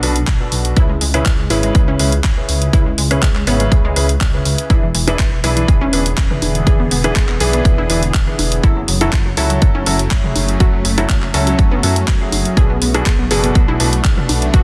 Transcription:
Already playing: D4
0.03 B1 B2 D4 F#4 A4 B4, open hi-hat
0.16 closed hi-hat
0.27 kick, clap, closed hi-hat
0.40 B2 D4 F#4 A4 B4
0.52 B1, open hi-hat
0.65 closed hi-hat
0.77 C#3 C#4 E4 G#4 B4, kick, closed hi-hat
0.89 G#3
1.01 C#2 G#3, open hi-hat
1.14 C#3 C#4 E4 G#4 B4, closed hi-hat
1.26 G#3, kick, clap, closed hi-hat
1.39 G#3
1.50 G#1 C#3 C#4 E4 G#4 B4, open hi-hat
1.63 G#3, closed hi-hat
1.75 C#2 C#3 G#3 C#4 E4 G#4 B4, kick, closed hi-hat
1.88 C#4
1.99 C#2 C#3 C#4 E4 G#4 B4, open hi-hat
2.12 closed hi-hat
2.24 kick, clap, closed hi-hat
2.37 C#3 C#4 E4 G#4 B4
2.49 C#2, open hi-hat
2.62 closed hi-hat
2.73 C#3 C#4 E4 G#4 B4, kick, closed hi-hat
2.86 G#3
2.98 C#2 G#3, open hi-hat
3.11 C#3 C#4 E4 G#4 B4, closed hi-hat
3.22 G#3, kick, clap, closed hi-hat
3.35 G#3, clap
3.47 G#1 C#3 B3 C#4 E4 G#4 B4, open hi-hat
3.60 G#3, closed hi-hat
3.72 C#2 C#3 G#3 C#4 E4 G#4 B4, kick, closed hi-hat
3.85 G#3
3.96 C#2 C#3 C#4 E4 G#4 B4, open hi-hat
4.09 closed hi-hat
4.21 kick, clap, closed hi-hat
4.34 C#3 C#4 E4 G#4 B4
4.45 C#2, open hi-hat
4.58 closed hi-hat
4.70 E1 D3 E3 B3 D4 E4 G#4 B4, kick, closed hi-hat
4.83 E3
4.95 E1 E3, open hi-hat
5.07 E3 D4 E4 G#4 B4, closed hi-hat, high conga
5.19 E1 E3, kick, clap, closed hi-hat
5.32 E3
5.44 B1 E3 D4 E4 G#4 B4, open hi-hat
5.57 E3, closed hi-hat
5.68 E3 D4 E4 G#4 B4, kick, closed hi-hat
5.81 C#4, high conga
5.93 E1 E3 D4 E4 G#4 B4, open hi-hat
6.06 closed hi-hat
6.17 kick, clap, closed hi-hat
6.30 E3 D4 E4 G#4 B4, mid tom
6.42 E1, open hi-hat, high conga
6.55 closed hi-hat
6.67 E1 E3 D4 E4 G#4 B4, kick, closed hi-hat
6.80 B3
6.91 E1 B3, open hi-hat
7.04 E3 D4 E4 G#4 B4, closed hi-hat, high conga
7.16 E1 B3, kick, clap, closed hi-hat
7.29 B3, clap
7.40 B1 E3 D4 E4 G#4 B4, open hi-hat
7.53 B3, closed hi-hat
7.65 E1 E3 B3 D4 E4 G#4 B4, kick, closed hi-hat
7.78 E4, high conga
7.90 E1 E3 D4 E4 G#4 B4, open hi-hat
8.03 closed hi-hat
8.14 kick, clap, closed hi-hat
8.27 E3 D4 E4 G#4 B4
8.39 E1, open hi-hat, high conga
8.52 closed hi-hat
8.63 F#3 A3 C#4 E4 F#4 A4, kick, closed hi-hat
8.77 F#3
8.88 F#1 F#3, open hi-hat
9.01 F#3 C#4 E4 F#4 A4, closed hi-hat, high conga
9.13 F#1 F#3, kick, clap, closed hi-hat
9.26 F#3
9.37 C#2 F#3 C#4 E4 F#4 A4, open hi-hat
9.50 F#3, closed hi-hat
9.62 F#1 F#3 C#4 E4 F#4 A4, kick, closed hi-hat
9.75 C#4, high conga
9.86 F#1 F#3 C#4 E4 F#4 A4, open hi-hat
9.99 closed hi-hat
10.11 kick, clap, closed hi-hat
10.24 F#3 C#4 E4 F#4 G#4, mid tom
10.36 F#1, open hi-hat, high conga
10.48 closed hi-hat
10.60 F#3 C#4 E4 F#4 A4, kick, closed hi-hat
10.73 F#3
10.85 F#1 F#3, open hi-hat
10.98 F#3 C#4 E4 F#4 A4, closed hi-hat, high conga
11.09 F#1 F#3, kick, clap, closed hi-hat
11.22 F#3, clap
11.34 C#2 F#3 C#4 E4 F#4 A4, open hi-hat
11.47 F#3, closed hi-hat
11.59 F#1 F#3 C#4 E4 F#4 A4, kick, closed hi-hat
11.71 B3, high conga
11.83 F#2 F#3 C#4 E4 F#4 A4, open hi-hat
11.96 closed hi-hat
12.08 F#2, kick, clap, closed hi-hat
12.21 F#3 C#4 E4 F#4 G#4
12.32 F#1, open hi-hat, high conga
12.45 closed hi-hat
12.57 B1 B2 A3 B3 D4 F#4 G#4 A4 B4, kick, closed hi-hat
12.70 B3
12.82 B1 B3, open hi-hat
12.94 B2 D4 F#4 G#4 A4 B4, closed hi-hat, high conga
13.06 B1 B3, kick, clap, closed hi-hat
13.19 B3
13.31 F#1 B2 D4 F#4 G#4 A4 B4, open hi-hat
13.44 B3, closed hi-hat
13.55 B1 B2 B3 D4 F#4 A4 B4, kick, closed hi-hat
13.68 E4, high conga
13.80 B1 B2 D4 F#4 A4 B4, open hi-hat
13.93 closed hi-hat
14.04 kick, clap, closed hi-hat
14.17 B2 D4 F#4 A4 B4, mid tom
14.29 B1, open hi-hat, high conga
14.42 closed hi-hat
14.54 B2 D4 F#4 A4 B4, kick, closed hi-hat

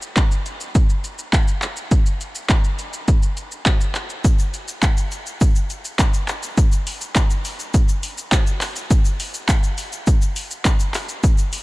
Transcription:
0.02 shaker
0.17 kick, clap, closed hi-hat, shaker
0.31 shaker
0.46 closed hi-hat, shaker
0.60 shaker
0.75 kick, closed hi-hat, shaker
0.90 shaker
1.04 closed hi-hat, shaker
1.19 shaker
1.33 kick, clap, closed hi-hat, shaker
1.48 shaker
1.62 clap, closed hi-hat, shaker
1.77 shaker
1.91 kick, closed hi-hat, shaker
2.06 shaker
2.21 closed hi-hat, shaker
2.35 shaker
2.50 kick, clap, closed hi-hat, shaker
2.64 shaker
2.79 closed hi-hat, shaker
2.93 shaker
3.08 kick, closed hi-hat, shaker
3.23 shaker
3.37 closed hi-hat, shaker
3.52 shaker
3.66 kick, clap, closed hi-hat, shaker
3.81 shaker
3.95 clap, closed hi-hat, shaker
4.10 shaker
4.24 kick, closed hi-hat, shaker
4.39 shaker
4.54 closed hi-hat, shaker
4.68 shaker
4.82 kick, clap, closed hi-hat, shaker
4.97 shaker
5.11 closed hi-hat, shaker
5.26 shaker
5.41 kick, closed hi-hat, shaker
5.56 shaker
5.70 closed hi-hat, shaker
5.85 shaker
5.99 kick, clap, closed hi-hat, shaker
6.14 shaker
6.28 clap, closed hi-hat, shaker
6.43 shaker
6.58 kick, closed hi-hat, shaker
6.72 shaker
6.87 open hi-hat, shaker
7.01 shaker
7.16 kick, clap, closed hi-hat, shaker
7.30 shaker
7.45 open hi-hat, shaker
7.59 shaker
7.74 kick, closed hi-hat, shaker
7.89 shaker
8.03 open hi-hat, shaker
8.18 shaker
8.32 kick, clap, closed hi-hat, shaker
8.47 shaker
8.61 clap, open hi-hat, shaker
8.76 shaker
8.91 kick, closed hi-hat, shaker
9.05 shaker
9.20 open hi-hat, shaker
9.34 shaker
9.49 kick, clap, closed hi-hat, shaker
9.63 shaker
9.78 open hi-hat, shaker
9.92 shaker
10.07 kick, closed hi-hat, shaker
10.22 shaker
10.36 open hi-hat, shaker
10.51 shaker
10.65 kick, clap, closed hi-hat, shaker
10.80 shaker
10.94 clap, open hi-hat, shaker
11.09 shaker
11.23 kick, closed hi-hat, shaker
11.38 shaker
11.52 open hi-hat, shaker

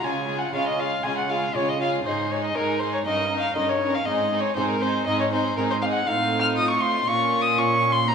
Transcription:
0.00 C#3 G#3 F4 G#4
0.04 C#3 G#5
0.26 G#3 F4 G#4
0.39 F#5
0.52 C#3 G#3 C#4 F4 G#4 F5
0.67 D#5
0.76 G#3 F4 G#4 F5
1.03 C#3 G#3 F4 G#4 G#5
1.18 F#5
1.29 G#3 F4 G#4 F5
1.54 C#3 G#3 C#4 F4 G#4 C#5
1.69 D#5
1.80 G#3 F4 G#4 F5
2.04 G#2 G#3 D#4 G#4 C5
2.29 G#3 D#4 G#4 C#5
2.44 D#5
2.55 G#2 G#3 D#4 G#4 A#4
2.79 G#3 D#4 G#4 C5
2.93 C#5
3.05 G2 C#4 D#4 A#4 D#5
3.31 C#4 D#4 A#4
3.40 F5
3.55 G2 C#4 D#4 A#4 D#5
3.69 C#5
3.80 C#4 D#4 A#4
3.95 F5
4.05 G#2 C4 D#4 G#4 D#5
4.31 C4 D#4 G#4
4.40 C#5
4.56 G#2 C4 D#4 G#4 C5
4.69 A#4
4.80 C4 D#4 G#4 C5
5.06 G#2 C4 D#4 G#4 D#5
5.20 C#5
5.31 C4 D#4 G#4 C5
5.57 G#2 C4 D#4 G#4 A#4
5.70 C5
5.81 C4 D#4 G#4 F5
5.92 F#5
6.06 A2 C4 D#4 F4 F5
6.40 F6
6.57 D#4 F4 D#6
6.70 C#6
6.80 C6
7.07 A#2 A#3 C#4 C#6
7.42 D#6
7.57 C#4 F4 C#6
7.92 C6
8.08 C4 D#4 F#4 A#5

